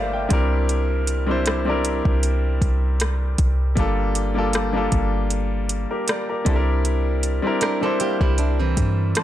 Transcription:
Already playing: 808-style bass G1, grand piano G3 A3 A#3 D4 F4 G4 A4 A#4 C5 D5 E5 F5, downlifter
0.13 grand piano E5 G5
0.29 808-style bass C2, grand piano G3 C4 D4 E4, kick, closed hi-hat
0.33 grand piano A#4
0.69 closed hi-hat
1.07 closed hi-hat
1.27 grand piano G3 C4 D4 E4
1.31 grand piano C5
1.46 cross-stick, closed hi-hat
1.65 grand piano G3 C4 D4 E4
1.70 grand piano A#4
1.85 closed hi-hat
2.05 808-style bass C2, kick
2.23 closed hi-hat
2.62 808-style bass C2, kick, closed hi-hat
3.00 cross-stick, closed hi-hat
3.38 808-style bass C2, kick, closed hi-hat
3.75 808-style bass G1, grand piano G3 A#3 D4 F4, kick, closed hi-hat
3.80 grand piano A4
4.15 closed hi-hat
4.34 grand piano G3 A#3 D4 F4
4.38 grand piano A4
4.53 cross-stick, closed hi-hat
4.73 grand piano G3 A#3 D4 F4
4.77 grand piano A4
4.92 808-style bass G1, kick, closed hi-hat
5.30 closed hi-hat
5.69 closed hi-hat
5.91 grand piano G4 A#4
6.08 grand piano A#4 D5, cross-stick, closed hi-hat
6.29 grand piano G4 A#4
6.45 808-style bass C2, grand piano G3 C4 D4 E4, kick, closed hi-hat
6.49 grand piano A4
6.56 grand piano A#4
6.85 closed hi-hat
7.23 closed hi-hat
7.42 grand piano G3 C4 D4 E4
7.47 grand piano A#4
7.61 nylon-string guitar D4 A#4, cross-stick, closed hi-hat
7.81 grand piano G3 C4 D4 E4, nylon-string guitar C4 A4
7.86 grand piano C5
8.00 nylon-string guitar A#3 G4, closed hi-hat
8.21 808-style bass C2, nylon-string guitar G3 E4, kick
8.38 nylon-string guitar D4, closed hi-hat
8.59 nylon-string guitar E3 C4
8.77 808-style bass G2, kick, closed hi-hat
9.15 grand piano A5 C6, cross-stick, closed hi-hat

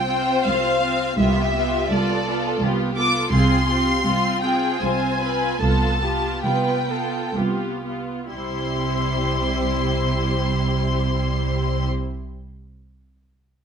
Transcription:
Already playing: cello section C2, violin section C5 G5
0.08 viola section C4 F4
0.45 cello section C2, viola section C4 F4, violin section F5
0.82 viola section C4 F4
1.18 cello section C2, double bass section C2, viola section B3 F4, violin section G4 E5
1.55 viola section B3 F4
1.91 cello section C2, viola section B3 F4, violin section A4 D5
2.28 viola section B3 F4
2.62 cello section C2, viola section B3 F4, violin section G4
2.96 viola section B3 F4, violin section A4 D6
3.32 cello section C2, double bass section C2, viola section C4 F4, violin section G#4 C6
3.68 viola section C4 F4, violin section G4
4.04 cello section C2, viola section C4 F4, violin section F4
4.42 viola section C4 F4, violin section G#4 G5
4.81 cello section C2, viola section C4 F4, violin section C5 G#5
5.21 viola section C4 F4, violin section B4
5.60 cello section C2, double bass section C2, viola section B3 F4, violin section A4 A5
6.01 viola section B3 F4, violin section G4
6.44 cello section C2, viola section B3 F4, violin section B4 G5
6.89 viola section B3 F4, violin section A4
7.35 cello section C2, viola section B3 F4, violin section G4
7.85 viola section B3 F4
8.33 double bass section C2, cello section C3, viola section G3 E4, violin section G4 C5 C6

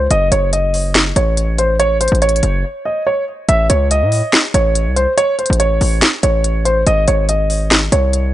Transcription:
0.11 808-style bass F#1, grand piano D#5, closed hi-hat
0.32 808-style bass F#1, grand piano C#5, closed hi-hat
0.53 grand piano D#5, closed hi-hat
0.74 open hi-hat
0.95 finger snap, snare, closed hi-hat
1.16 808-style bass A1, grand piano C#5, closed hi-hat
1.37 closed hi-hat
1.58 grand piano C5, closed hi-hat
1.80 grand piano C#5, closed hi-hat
2.01 grand piano C5, closed hi-hat
2.08 closed hi-hat
2.12 808-style bass A1, closed hi-hat
2.22 grand piano C#5, closed hi-hat
2.29 closed hi-hat
2.36 closed hi-hat
2.43 808-style bass F#1, closed hi-hat
2.85 grand piano D#5
3.07 grand piano C#5
3.49 808-style bass A1, grand piano E5, closed hi-hat
3.70 808-style bass C#2, grand piano C#5, closed hi-hat
3.91 grand piano D#5, closed hi-hat
4.02 808-style bass A2
4.12 open hi-hat
4.33 finger snap, snare, closed hi-hat
4.54 808-style bass A1, grand piano C#5, closed hi-hat
4.75 closed hi-hat
4.87 808-style bass C2
4.96 grand piano C5, closed hi-hat
5.18 grand piano C#5, closed hi-hat
5.39 grand piano C5, closed hi-hat
5.46 closed hi-hat
5.50 808-style bass A1, closed hi-hat
5.60 grand piano C#5, closed hi-hat
5.81 808-style bass A1, open hi-hat
6.02 finger snap, snare, closed hi-hat
6.23 808-style bass A1, grand piano C#5, closed hi-hat
6.44 closed hi-hat
6.65 grand piano C5, closed hi-hat
6.87 808-style bass G#1, grand piano D#5, closed hi-hat
7.08 808-style bass G#1, grand piano C#5, closed hi-hat
7.29 grand piano D#5, closed hi-hat
7.50 open hi-hat
7.71 finger snap, snare, closed hi-hat
7.92 808-style bass C2, grand piano C#5, closed hi-hat
8.13 closed hi-hat

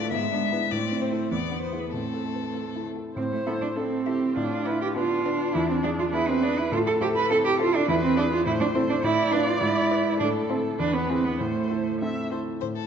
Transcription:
Already playing: grand piano A2 D4 F4 B4, viola A3, cello A3, violin D5
0.11 grand piano G#2, cello G#3, viola B3, violin E5
0.32 grand piano D4
0.42 cello G#3
0.52 grand piano E4 B4
0.71 grand piano A2, cello A3, viola C4, violin D5
0.91 grand piano C4
1.02 violin C5
1.11 grand piano E4 A4
1.31 grand piano E2, viola B3, cello B3, violin D5
1.51 grand piano B3
1.62 violin C5
1.72 grand piano E4 G#4
1.79 violin B4
1.93 grand piano A2, viola A3, cello C4, violin A4
2.14 grand piano A4
2.34 grand piano B4
2.55 grand piano A4
2.75 grand piano E4
2.96 grand piano A4
3.16 grand piano A2, cello C4, viola C5
3.32 cello A3
3.46 cello B3, grand piano E4 A4, violin E5
3.61 cello D4
3.76 cello C4, grand piano C4 E4 A4, viola A4
4.06 grand piano E4 A4, viola G4, violin E5
4.35 grand piano A2, cello D4, viola F4
4.65 grand piano D4 B4, cello E4, violin D5
4.81 cello G4
4.95 grand piano B3 D4 B4, viola D4, cello F4
5.25 grand piano D4 B4, violin D5
5.54 grand piano E2, cello E4
5.69 cello C4
5.83 cello D4, grand piano D4 G#4, violin D5
5.99 cello F4
6.13 grand piano B3 D4 G#4, cello E4, viola B4
6.28 cello C4
6.42 cello D4, grand piano D4 G#4, violin D5
6.58 cello E4
6.72 grand piano A2, cello F4, viola A4
6.87 cello A4
7.01 grand piano E4 A4, cello G4, violin C5
7.16 cello B4
7.30 grand piano C4 E4 A4, cello A4
7.45 cello G4
7.59 grand piano E4 A4, cello F4, violin C5
7.75 cello D4
7.88 grand piano E2, cello E4, viola B4
8.03 cello C4
8.17 cello D4, grand piano E4 G#4, violin D5
8.32 cello F4
8.45 grand piano A2, cello E4, viola C5
8.60 cello D4
8.74 cello C4, grand piano E4 A4, violin C5
8.89 cello D4
9.03 grand piano A2, cello E4, viola D5
9.32 cello D4, grand piano F4 B4, violin B4
9.47 cello F4
9.61 grand piano G#2, cello E4
9.91 grand piano E4 B4, violin D5
10.19 grand piano A2, cello D4, viola A4
10.49 cello C4, grand piano E4 A4, violin C5
10.79 grand piano E2, cello D4, viola B4
10.94 cello B3
11.09 cello C4, grand piano E4 G#4, violin G#4
11.25 cello B3
11.40 grand piano A2, cello A3, viola C5
11.69 grand piano E4 A4, violin C5
12.01 grand piano C4 E4 A4, viola E5
12.31 grand piano E4 A4, viola C5, violin C5
12.61 grand piano A2, violin C5
12.76 violin A4

